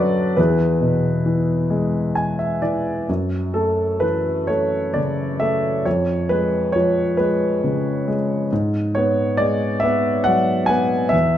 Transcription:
0.00 0.34 F#2 medium
0.00 0.40 D3 medium
0.00 0.40 F#3 medium
0.00 0.35 A4 medium
0.00 0.37 B4 medium
0.00 0.39 C#5 medium
0.00 0.40 D5 medium
0.37 3.04 E2 medium
0.37 2.13 E4 soft
0.37 2.13 G#4 soft
0.37 2.12 B4 medium
0.81 2.58 B2 soft
1.26 2.61 E3 medium
1.70 3.04 G#3 medium
2.15 2.37 G#5 medium
2.39 2.60 E5 medium
2.62 3.07 E3 soft
2.62 3.05 D5 medium
3.09 5.82 F#2 soft
3.54 4.48 A3 soft
3.54 4.03 A4 medium
4.00 5.82 E3 soft
4.00 4.49 B4 medium
4.47 5.40 A3 soft
4.47 4.96 C#5 medium
4.94 5.83 C#3 soft
4.94 5.42 D5 medium
5.40 5.85 A3 soft
5.40 5.82 E5 medium
5.85 8.47 F2 medium
5.85 6.31 C#5 medium
6.29 7.18 G#3 soft
6.29 6.75 B4 medium
6.72 8.47 F3 medium
6.72 7.14 C#5 medium
7.17 8.06 G#3 medium
7.17 8.13 B4 medium
7.64 8.49 C#3 soft
8.08 8.50 G#3 medium
8.52 11.10 G#2 medium
8.95 9.82 B3 soft
8.95 9.40 C#5 medium
9.37 11.09 G#3 medium
9.37 9.83 D5 medium
9.80 10.68 B3 medium
9.80 10.26 E5 medium
10.24 11.10 F#3 soft
10.24 10.65 F#5 medium
10.66 11.12 B3 medium
10.66 11.12 G#5 medium
11.09 11.38 E2 medium
11.09 11.38 E5 medium

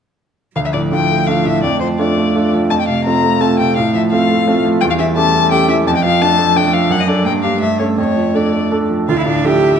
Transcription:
0.56 1.60 D2 soft
0.56 1.65 F3 soft
0.56 0.60 F5 medium
0.65 0.69 E5 soft
0.73 1.02 A2 soft
0.73 0.80 D5 soft
0.91 1.08 A3 soft
0.91 1.08 D4 soft
0.91 1.08 F4 soft
0.91 1.29 G5 medium
1.09 1.26 A3 soft
1.27 1.43 A3 soft
1.27 1.44 D4 soft
1.27 1.44 F4 soft
1.27 1.47 F5 medium
1.45 1.63 A2 soft
1.45 1.62 E5 medium
1.63 2.67 F2 soft
1.63 3.77 A3 soft
1.63 1.79 D5 soft
1.80 2.10 F3 soft
1.80 1.87 C5 medium
1.99 2.15 A3 soft
1.99 2.15 D4 soft
1.99 2.15 F4 soft
1.99 2.51 D5 soft
2.17 2.33 A3 soft
2.35 2.51 A3 soft
2.35 2.51 D4 soft
2.35 2.51 F4 soft
2.53 2.71 F3 soft
2.70 3.73 F2 soft
2.70 2.74 A5 medium
2.80 2.87 G5 soft
2.88 3.17 C3 soft
2.88 3.04 F5 medium
3.05 3.22 A3 soft
3.05 3.22 C4 soft
3.05 3.23 F4 soft
3.05 3.42 A#5 medium
3.23 3.39 A3 soft
3.41 3.57 A3 soft
3.41 3.57 C4 soft
3.41 3.57 F4 soft
3.41 3.58 A5 medium
3.59 3.77 C3 soft
3.59 3.76 G5 medium
3.76 4.78 A2 soft
3.76 4.84 A3 soft
3.76 3.94 F5 medium
3.94 4.22 F3 soft
3.94 4.01 E5 medium
4.11 4.28 A3 soft
4.11 4.28 C4 soft
4.11 4.28 F4 soft
4.11 4.63 F5 medium
4.29 4.46 A3 soft
4.47 4.63 A3 soft
4.47 4.63 C4 soft
4.47 4.63 F4 soft
4.65 4.82 F3 soft
4.81 5.84 E2 medium
4.81 5.86 G3 medium
4.81 4.85 G5 medium
4.90 4.94 F5 medium
4.99 5.27 E3 soft
4.99 5.06 E5 medium
5.16 5.32 A3 soft
5.16 5.32 C#4 soft
5.16 5.33 G4 soft
5.16 5.51 A5 medium
5.34 5.50 A3 soft
5.51 5.67 A3 soft
5.51 5.67 C#4 soft
5.51 5.67 G4 soft
5.51 5.69 G5 medium
5.69 5.86 E3 soft
5.69 5.76 E5 medium
5.87 6.87 F2 medium
5.87 6.91 F3 medium
5.87 5.91 A5 medium
5.96 6.04 G5 medium
6.04 6.32 F3 soft
6.04 6.23 F5 medium
6.21 6.36 A3 soft
6.21 6.37 D4 soft
6.21 6.37 A4 soft
6.21 6.58 A5 medium
6.38 6.54 A3 soft
6.56 6.71 A3 soft
6.56 6.71 D4 soft
6.56 6.72 A4 soft
6.56 6.75 G5 medium
6.73 6.90 F3 soft
6.73 6.93 F5 medium
6.89 7.24 F#2 medium
6.89 7.27 F#3 soft
6.89 7.02 F#5 medium
7.00 7.10 D#5 medium
7.07 7.23 D4 soft
7.07 7.24 A4 soft
7.07 7.25 D5 medium
7.25 7.60 G2 soft
7.25 7.61 A#3 soft
7.25 7.33 G5 medium
7.43 7.59 D4 soft
7.43 7.60 G4 soft
7.43 7.60 F5 medium
7.60 7.97 G2 soft
7.60 8.88 A3 soft
7.60 7.78 E5 medium
7.79 7.96 C#4 soft
7.79 7.96 A4 soft
7.79 7.86 C#5 soft
7.98 9.05 F2 soft
7.98 8.37 C#5 medium
8.16 8.46 F3 soft
8.34 8.51 A3 soft
8.34 8.51 D4 soft
8.34 8.52 A4 soft
8.34 8.72 D5 soft
8.53 8.70 A3 soft
8.71 8.88 A3 soft
8.71 8.88 D4 soft
8.71 8.89 A4 soft
8.90 9.08 F3 soft
9.08 9.80 D2 soft
9.08 9.17 F4 medium
9.08 9.46 F5 soft
9.18 9.27 E4 medium
9.26 9.55 A2 soft
9.26 9.47 D4 medium
9.43 9.60 F3 soft
9.43 9.60 D4 soft
9.43 9.80 G4 medium
9.43 9.60 A4 soft
9.43 9.80 E5 soft
9.62 9.77 F3 soft

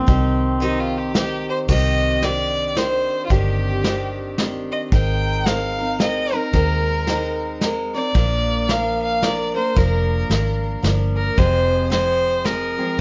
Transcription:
0.00 1.12 C4 medium
0.07 1.47 C2 loud
0.07 0.61 C3 medium
0.07 0.59 D#3 medium
0.07 0.60 C4 loud
0.07 0.61 D#4 medium
0.07 0.62 G4 medium
0.07 kick loud
0.07 closed hi-hat medium
0.60 1.13 D#3 medium
0.60 1.14 C4 medium
0.60 0.81 D#4 medium
0.60 1.15 D#4 medium
0.60 1.16 G4 medium
0.60 closed hi-hat medium
0.80 0.99 F4 medium
0.98 1.15 G4 medium
1.14 1.67 D#3 medium
1.14 1.68 C4 medium
1.14 1.70 D#4 medium
1.14 1.47 G4 loud
1.14 1.69 G4 medium
1.14 snare medium
1.14 closed hi-hat medium
1.50 1.59 C5 loud
1.68 3.09 C2 medium
1.68 2.22 C3 medium
1.68 2.21 D#3 medium
1.68 2.23 C4 medium
1.68 2.23 G4 medium
1.68 2.25 D#5 loud
1.68 kick loud
1.68 crash medium
2.22 2.74 D#3 medium
2.22 2.76 C4 medium
2.22 2.76 D4 medium
2.22 2.77 G4 medium
2.22 2.79 D5 loud
2.22 snare medium
2.22 closed hi-hat medium
2.76 3.29 D#3 medium
2.76 3.30 C4 medium
2.76 3.30 D4 medium
2.76 3.30 G4 medium
2.76 3.25 C5 medium
2.76 snare medium
2.76 closed hi-hat medium
3.25 3.32 F4 medium
3.30 4.70 G1 medium
3.30 3.84 C3 medium
3.30 3.83 D#3 medium
3.30 3.84 C4 medium
3.30 3.85 D4 medium
3.30 4.38 G4 medium
3.30 3.85 G4 medium
3.30 kick loud
3.30 closed hi-hat medium
3.84 4.37 D#3 medium
3.84 4.39 C4 medium
3.84 4.38 D4 medium
3.84 4.39 G4 medium
3.84 snare medium
3.84 closed hi-hat medium
4.38 4.92 D#3 medium
4.38 4.92 C4 medium
4.38 4.93 D4 medium
4.38 4.93 G4 medium
4.38 snare medium
4.38 closed hi-hat medium
4.72 4.81 D#5 medium
4.92 6.32 G#1 loud
4.92 5.44 G#3 medium
4.92 5.46 C4 medium
4.92 5.46 D#4 medium
4.92 5.48 A#4 medium
4.92 5.48 G5 loud
4.92 kick loud
4.92 closed hi-hat medium
5.45 5.79 G#3 medium
5.45 5.79 C4 medium
5.45 5.79 D#4 medium
5.45 5.78 A#4 medium
5.45 6.00 F5 loud
5.45 snare medium
5.45 closed hi-hat medium
5.79 5.98 C4 soft
5.79 5.99 D#4 medium
5.79 6.00 A#4 soft
5.99 6.32 G#3 medium
5.99 6.33 C4 medium
5.99 6.33 D#4 medium
5.99 6.31 A#4 medium
5.99 6.36 D#5 medium
5.99 snare medium
5.99 closed hi-hat medium
6.32 6.53 C4 soft
6.32 6.53 D#4 soft
6.32 6.53 A#4 medium
6.32 7.62 A#4 loud
6.53 7.93 D#2 medium
6.53 7.06 G#3 medium
6.53 7.07 C4 medium
6.53 7.08 D#4 medium
6.53 7.09 A#4 medium
6.53 kick medium
6.53 closed hi-hat medium
7.07 7.60 G#3 medium
7.07 7.61 C4 medium
7.07 7.62 D#4 medium
7.07 7.63 A#4 medium
7.07 snare medium
7.07 closed hi-hat medium
7.61 7.94 G#3 medium
7.61 7.94 C4 medium
7.61 7.95 D#4 medium
7.61 7.93 A#4 medium
7.61 snare medium
7.61 closed hi-hat medium
7.94 8.15 C4 soft
7.94 8.16 D#4 soft
7.94 8.15 A#4 soft
7.94 8.71 D5 loud
8.15 9.55 A#1 medium
8.15 8.69 A#2 medium
8.15 8.67 F3 medium
8.15 8.68 A#3 medium
8.15 8.69 D4 medium
8.15 8.69 A#4 medium
8.15 kick loud
8.15 closed hi-hat medium
8.68 9.22 F3 medium
8.68 9.22 A#3 medium
8.68 9.23 D4 medium
8.68 9.23 A#4 medium
8.68 9.02 F5 loud
8.68 snare medium
8.68 closed hi-hat medium
9.02 9.25 F5 loud
9.22 9.55 F3 medium
9.22 9.56 A#3 medium
9.22 9.55 D4 medium
9.22 9.53 A#4 medium
9.22 9.55 D5 loud
9.22 snare medium
9.22 closed hi-hat medium
9.54 9.75 A#3 soft
9.54 9.76 D4 soft
9.54 9.76 A#4 soft
9.54 9.79 C5 medium
9.76 10.23 F1 medium
9.76 10.30 A#2 medium
9.76 10.29 F3 medium
9.76 10.29 A#3 medium
9.76 10.30 D4 medium
9.76 10.31 A#4 medium
9.76 10.84 A#4 medium
9.76 kick loud
9.76 closed hi-hat medium
10.30 10.76 G#1 medium
10.30 10.82 F3 medium
10.30 10.82 A#3 medium
10.30 10.84 D4 medium
10.30 10.84 A#4 medium
10.30 snare medium
10.30 closed hi-hat medium
10.83 11.29 G1 medium
10.83 11.37 F3 medium
10.83 11.37 A#3 medium
10.83 11.38 D4 medium
10.83 11.38 A#4 medium
10.83 snare medium
10.83 closed hi-hat medium
11.17 11.39 A#4 medium
11.37 12.77 F1 medium
11.37 11.91 F2 medium
11.37 11.91 C3 medium
11.37 11.89 F3 medium
11.37 11.90 G#3 medium
11.37 11.92 C4 medium
11.37 11.92 G#4 medium
11.37 11.92 C5 loud
11.37 kick loud
11.37 closed hi-hat medium
11.90 12.43 F3 medium
11.90 12.44 G#3 medium
11.90 12.46 C4 medium
11.90 12.46 G#4 medium
11.90 12.47 C5 loud
11.90 snare medium
11.90 closed hi-hat medium
12.44 12.78 F3 medium
12.44 12.78 G#3 medium
12.44 12.77 C4 medium
12.44 12.76 G#4 medium
12.44 13.01 A#4 loud
12.44 snare medium
12.44 closed hi-hat medium
12.78 12.98 F3 soft
12.78 12.98 G#3 soft
12.78 12.99 C4 soft
12.78 12.99 G#4 soft

